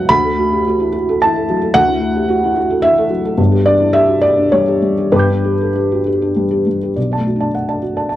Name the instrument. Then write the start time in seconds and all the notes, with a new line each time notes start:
felt piano
Already playing: C#2 F#3 B3 E4 F#4 G4 C#5 F#5
0.09 D2 B5
0.24 A4
0.39 F#4
0.52 G4
0.68 F#4
0.80 E4
0.92 F#4
1.09 A4
1.22 E4 A5
1.36 A4
1.50 F#3
1.61 A4
1.74 D2 F#5
1.88 E4
2.01 F#4
2.15 G4
2.28 F#4
2.44 E4
2.56 F#4
2.70 A4
2.82 E4 E5
2.98 A4
3.10 F#3
3.25 A4
3.37 G1 G2
3.52 G4
3.66 D4 D5
3.80 E4
3.93 G4 E5
4.08 F#4
4.22 G4 D5
4.37 D4
4.52 G3 C#5
4.68 G4
4.82 G3
4.98 G4
5.12 G1 G2 B4 G5
5.16 D6 G6
5.30 D4
5.44 G4
5.61 A4
5.75 G4
5.92 F#4
6.07 G4
6.22 D4
6.36 G3
6.51 G4
6.67 G3
6.83 G4
6.96 B1 D5
7.12 D5 A5
7.17 A3
7.27 F#4
7.36 D4
7.40 D5 A5
7.55 F#5
7.69 D5 A5
7.82 F#4
7.97 D5 A5
8.09 A5